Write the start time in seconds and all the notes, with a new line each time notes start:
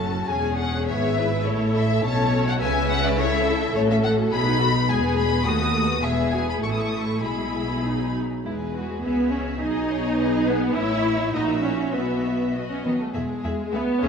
Already playing: F#1 F#2 C#4 A4 A5
0.00 F#4
0.28 E1 E2 C#4 G#4 G#5
0.58 F#5
0.86 G#1 G#2 B3 C#5 E5
1.17 E4 B4
1.46 A1 A2 A4 C#5
1.76 E5
2.04 B1 B2 C#4 A4 C#5 A5
2.48 F#5
2.60 C#2 C#3 C#4 B4 E5 G#5
2.90 F#5
3.05 D5
3.17 E4 A4 C#5 E5
3.48 A4
3.75 A1 A2 A3 A4 C#5
3.88 C#4 F#4 E5
4.04 A3 A4 F#5
4.18 C#4 F#4
4.31 B1 B2 F#4 G#4 A4 B5
4.46 D#4 B4
4.61 F#4 A4
4.75 D#4 B4
4.87 E1 E2 G#3 G#4 G#5
5.03 B3 B4
5.17 G#3 G#4 B5
5.32 B3 B4
5.45 D#2 A3 F#4 A4 D#6
5.61 B3 B4
5.75 A3 A4
5.89 B3 B4
6.02 E1 E2 B3 G#4 E5
6.32 F#4 G#5
6.49 B5
6.61 A1 A2 A3 E4 A4 C#6
6.72 D#6
6.79 C#6
6.88 D#6
6.98 C#6
7.22 B1 B2 G#3 E4 G#4 B5
7.82 F#3 D#4
8.43 E1 E2 G#3 E4 G#4 B4
8.75 F#4
9.02 C#2 C#3 B3 G#4 B4 E5
9.32 C#4 C#5
9.61 B1 B2 D#4 D#5
9.91 C#5
10.19 G#4 B4
10.48 B3 B4
10.77 A1 A2 E4 C#5 E5
11.33 A#1 A#2 D#4 F#4 D#5 E5
11.62 C#4 C#5
11.92 B1 B2 B3 F#4 B4 E5
12.55 B2 F#4 D#5
12.69 C#4 C#5
12.84 D#3 B3 B4
12.99 A3 A4
13.13 E1 E2 G#3 G#4 E5
13.43 E1 E2 G#4 E5
13.73 C#2 C#3 B3 G#4 B4 E5
14.02 C#2 C#3 C#4 G#4 C#5 E5